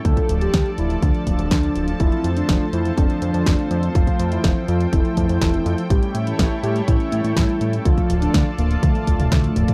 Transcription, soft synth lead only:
X:1
M:4/4
L:1/16
Q:1/4=123
K:F
V:1 name="Soft synth lead"
A2 z G2 z E2 D6- D z | E2 z D2 z E2 D6- D z | F2 z E2 z F2 E6- E z | G2 z E2 z G2 E6- E z |
F2 z D2 z B,2 A,6- A, z |]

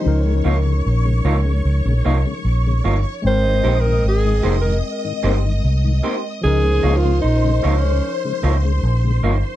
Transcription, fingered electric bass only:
X:1
M:4/4
L:1/16
Q:1/4=75
K:Dblyd
V:1 name="Fingered electric bass" clef=bass
D,,2 D,,2 B,,,2 D,,2 D,, B,,, C,, z B,,,2 G,,, z | A,,,2 B,,,2 A,,,2 F,,,2 z2 G,,,2 C,,2 z2 | D,,2 D,,2 B,,,2 D,,2 z2 D,,2 B,,,2 G,,, z |]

